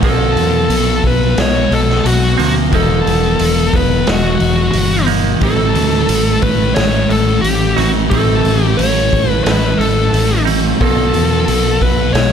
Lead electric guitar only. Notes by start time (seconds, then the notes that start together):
0.05 A4
1.07 B4
1.40 C#5
1.73 A4
2.07 F#4
2.75 A4
3.76 B4
4.10 F#4
5.43 A4
6.42 B4
6.75 C#5
7.09 A4
7.42 G4
7.78 F#4
8.10 A4
8.63 G4
8.77 C#5
9.30 B4
9.44 B4
9.78 A4
10.82 A4
11.82 B4
12.14 C#5